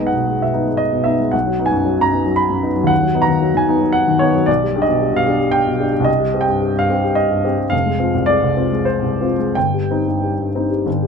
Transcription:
Already playing: B1 G#3 D#5
0.00 B3 D#4
0.07 F#5
0.13 B2
0.27 G#3
0.40 B2 E5
0.54 B3 D#4
0.67 G#3
0.77 D#5
0.92 B2
1.04 B3 D#4 E5
1.20 G#3
1.32 B1 F#5
1.46 F#3
1.59 B3 D#4
1.66 G#5
1.71 F#2
1.85 F#3
1.99 F#2 A#5
2.12 B3 D#4
2.26 F#3
2.36 B5
2.50 F#2
2.63 B3 D#4
2.76 F#3
2.84 D#2 F#5
3.02 F#3
3.14 B3 D#4
3.22 A#5
3.28 D#3
3.41 F#3
3.55 D#3 G#5
3.69 B3 D#4
3.81 F#3
3.93 F#5
4.08 D#3
4.19 B3 D#4 C#5
4.35 F#3
4.46 B1 D5
4.63 G3
4.75 D4 G4
4.82 D#5
4.87 B2
5.01 G3
5.13 B2 F5
5.27 D4 G4
5.40 G3
5.52 G5
5.67 B2
5.80 D4 G4
5.93 G3
6.00 C2
6.05 D#5
6.20 G3
6.34 C4 G4
6.41 G5
6.48 G2
6.62 G3
6.76 G2 F5
6.89 C4 G4
7.04 G3
7.15 D#5
7.31 G2
7.45 C4 G4
7.58 G3
7.70 F1 F5
7.86 G#3
8.00 C4 F4
8.15 C2
8.26 G#3 D5
8.42 C2
8.57 C4 F4
8.72 G#3
8.85 C5
9.02 C2
9.21 C4 F4
9.39 G#3
9.55 G1 G5
9.74 G3
9.91 C4 D#4
10.08 G2
10.23 G3
10.40 G2
10.55 C4 D#4
10.71 G3
10.86 G1
11.02 G3

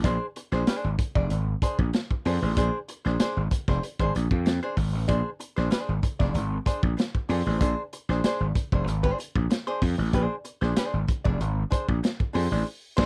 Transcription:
0.04 A#1 D4 G#4 C5, kick, closed hi-hat
0.36 muted hollow-body jazz guitar stroke, closed hi-hat
0.52 A#1 D4 G#4 C5, snare
0.67 D4 G#4 C5, snare, closed hi-hat
0.84 G#1
0.99 muted hollow-body jazz guitar stroke, kick, closed hi-hat
1.15 F1 D4 G#4 D5, kick
1.30 G#1, muted hollow-body jazz guitar stroke, closed hi-hat
1.62 D4 G#4 C5, kick, closed hi-hat
1.79 A#1, muted hollow-body jazz guitar stroke, kick
1.93 muted hollow-body jazz guitar stroke, snare, closed hi-hat
2.11 muted hollow-body jazz guitar stroke, kick
2.25 F2 D4 G#4 C5, open hi-hat
2.42 A1 D4 G#4 C5
2.57 A#1 D4 G#4 C5, kick, closed hi-hat
2.88 muted hollow-body jazz guitar stroke, closed hi-hat
3.05 A#1 D4 G#4 C5, snare
3.19 D4 G#4 C5, snare, closed hi-hat
3.37 G#1
3.51 muted hollow-body jazz guitar stroke, kick, closed hi-hat
3.68 F1 D4 G#4 C5, kick, snare
3.83 muted hollow-body jazz guitar stroke, closed hi-hat
3.99 G#1 D4 G#4 C5, kick
4.15 A#1, muted hollow-body jazz guitar stroke, closed hi-hat
4.31 F2, muted hollow-body jazz guitar stroke, kick
4.45 F2, muted hollow-body jazz guitar stroke, snare, closed hi-hat
4.63 D4 G#4 C5
4.76 G#1, muted hollow-body jazz guitar stroke, kick, open hi-hat
4.93 A1, muted hollow-body jazz guitar stroke
5.08 A#1 D4 G#4 C5, kick, closed hi-hat
5.40 muted hollow-body jazz guitar stroke, closed hi-hat
5.56 A#1 D4 G#4 C5, snare
5.70 D4 G#4 C5, snare, closed hi-hat
5.89 G#1
6.03 muted hollow-body jazz guitar stroke, kick, closed hi-hat
6.19 F1 D4 G#4 D5, kick, snare
6.34 G#1, muted hollow-body jazz guitar stroke, closed hi-hat
6.66 D4 G#4 C5, kick, closed hi-hat
6.83 A#1, muted hollow-body jazz guitar stroke, kick
6.97 muted hollow-body jazz guitar stroke, snare, closed hi-hat
7.15 muted hollow-body jazz guitar stroke, kick
7.29 F2 D4 G#4 C5, open hi-hat
7.45 A1 D4 G#4 C5
7.61 A#1 D4 G#4 C5, kick, closed hi-hat
7.93 muted hollow-body jazz guitar stroke, closed hi-hat
8.09 A#1 D4 G#4 C5, snare
8.24 D4 G#4 C5, snare, closed hi-hat
8.40 G#1
8.55 muted hollow-body jazz guitar stroke, kick, closed hi-hat
8.72 F1 D4 G#4 C5, kick
8.87 G#1, muted hollow-body jazz guitar stroke, closed hi-hat
9.03 D4 G#4 C5, kick
9.18 muted hollow-body jazz guitar stroke, closed hi-hat
9.35 A#1, muted hollow-body jazz guitar stroke, kick
9.50 muted hollow-body jazz guitar stroke, snare, closed hi-hat
9.67 D4 G#4 C5
9.82 F2, muted hollow-body jazz guitar stroke, kick, open hi-hat
9.98 A1, muted hollow-body jazz guitar stroke
10.13 A#1 D4 G#4 C5, kick, closed hi-hat
10.45 muted hollow-body jazz guitar stroke, closed hi-hat
10.61 A#1 D4 G#4 C5, snare
10.77 D4 G#4 C5, snare, closed hi-hat
10.94 G#1
11.08 muted hollow-body jazz guitar stroke, kick, closed hi-hat
11.24 F1 D4 G#4 D5, kick
11.40 G#1, muted hollow-body jazz guitar stroke, closed hi-hat
11.71 D4 G#4 C5, kick, closed hi-hat
11.88 A#1, muted hollow-body jazz guitar stroke, kick
12.03 muted hollow-body jazz guitar stroke, snare, closed hi-hat
12.20 muted hollow-body jazz guitar stroke, kick
12.33 F2 D4 G#4 C5, open hi-hat
12.51 A1 D4 G#4 C5
12.97 A#1 D4 G#4 C5, kick, snare, crash

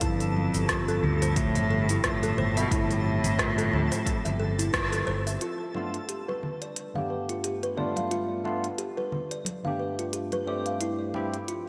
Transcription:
Already playing: A4 A5
0.01 G1 F2 F3 C4 E4 G4, kick, closed hi-hat, cabasa
0.20 closed hi-hat, cabasa
0.37 high conga
0.54 G1, cabasa
0.69 F4, kick, cross-stick, closed hi-hat, cabasa
0.88 A4, cabasa
1.03 D2 G2, high conga, low conga
1.22 C5, closed hi-hat, cabasa
1.36 A2, kick, closed hi-hat, cabasa
1.55 G1 E5, closed hi-hat, high conga, low conga, cabasa
1.71 A4, muted conga
1.89 G2 E4, closed hi-hat, cabasa
2.04 G1 A2 F4, kick, cross-stick, closed hi-hat, high conga, cabasa
2.23 A4, closed hi-hat, muted conga, cabasa
2.37 G1 C5, low conga
2.56 B2 E5, closed hi-hat, high conga, cabasa
2.71 G1 A2 E4, kick, closed hi-hat, muted conga, cabasa
2.91 closed hi-hat, muted conga, cabasa
3.06 high conga
3.24 G1, closed hi-hat, cabasa
3.39 F4, kick, cross-stick, closed hi-hat, cabasa
3.58 A4, closed hi-hat, cabasa
3.73 D2, high conga, low conga
3.91 C5, closed hi-hat, cabasa
4.06 kick, closed hi-hat, muted conga, high conga, cabasa
4.25 G1 E5, closed hi-hat, muted conga, low conga, cabasa
4.40 A4, high conga
4.59 E4, closed hi-hat, cabasa
4.73 G1 F4, kick, cross-stick, closed hi-hat, cabasa
4.92 A4, closed hi-hat, high conga, cabasa
5.07 G1 C5, muted conga
5.27 E5, closed hi-hat, cabasa
5.41 G3 D4 F4 A4 B4, closed hi-hat
5.74 G2 A3 B3 D4 F4, muted conga, high conga
5.94 closed hi-hat
6.09 G4, closed hi-hat
6.28 B4, muted conga
6.43 high conga, low conga
6.62 D5, closed hi-hat
6.76 closed hi-hat
6.94 G2 A3 B3 D4 F5, high conga, low conga
6.98 G4
7.10 B4
7.29 F4, closed hi-hat
7.44 G4, closed hi-hat
7.63 B4, closed hi-hat
7.76 G2 A3 B3 D4 F4 D5, low conga
7.96 F5, closed hi-hat, muted conga, high conga
8.11 F4, closed hi-hat
8.43 G2 A3 B3 D4 F4, muted conga, high conga
8.64 closed hi-hat
8.78 G4, closed hi-hat
8.97 B4, muted conga
9.12 low conga
9.31 D5, closed hi-hat
9.45 closed hi-hat, high conga
9.63 G2 A3 B3 D4 F5, low conga
9.68 G4
9.80 B4
9.99 F4, closed hi-hat
10.13 G4, closed hi-hat
10.32 B4, closed hi-hat, high conga
10.46 G2 A3 C4 G4 D5
10.66 F5, closed hi-hat
10.81 G2 F3 C4 E4 G4, closed hi-hat
11.14 G2 A3 C4 E4 G4, muted conga, high conga
11.34 closed hi-hat
11.48 F4, closed hi-hat

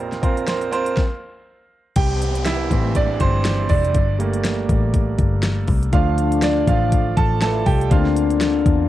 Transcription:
Already playing: A#1 F2 C4 F4 A#4 C5
0.12 snare, closed hi-hat
0.22 C4 F4 A#4 C5, kick, closed hi-hat
0.37 closed hi-hat
0.47 C4 F4 A#4 C5, snare, closed hi-hat
0.61 closed hi-hat
0.71 C4 F4 A#4 C5, closed hi-hat
0.86 closed hi-hat
0.97 kick, snare
1.96 C2 G4 G5, kick, closed hi-hat, crash, downlifter
2.22 closed hi-hat
2.35 closed hi-hat
2.45 E4 E5, snare, closed hi-hat
2.70 A1 E3 G3 C4, kick, closed hi-hat
2.95 D4 D5, kick, closed hi-hat
3.20 G1 C4 C5, kick, closed hi-hat
3.45 snare, closed hi-hat
3.69 F1 D4 D5, kick, open hi-hat
3.85 closed hi-hat
3.95 G1, kick, closed hi-hat
4.19 G3 A3 A#3, closed hi-hat
4.33 closed hi-hat
4.45 snare, closed hi-hat
4.69 A1, kick, closed hi-hat
4.94 kick, closed hi-hat
5.19 G1, kick, closed hi-hat
5.43 snare, closed hi-hat
5.68 C2, kick, open hi-hat
5.83 closed hi-hat
5.93 D2 D3 F3 A3 D4 F4 F5, kick, closed hi-hat
6.18 closed hi-hat
6.32 closed hi-hat
6.42 D4 D5, snare, closed hi-hat
6.67 A1 F3 A3 D4 F4 F5, kick, closed hi-hat
6.92 kick, closed hi-hat
7.17 A1 A4 A5, kick, closed hi-hat
7.41 E3 E4 A4 A5, snare, closed hi-hat
7.66 C2 G4 G5, kick, open hi-hat
7.81 closed hi-hat
7.90 D2 D3 A#3 C4 D4 F4 F5, kick, closed hi-hat
8.05 snare
8.16 closed hi-hat
8.30 closed hi-hat
8.41 snare, closed hi-hat
8.66 E2, kick, closed hi-hat

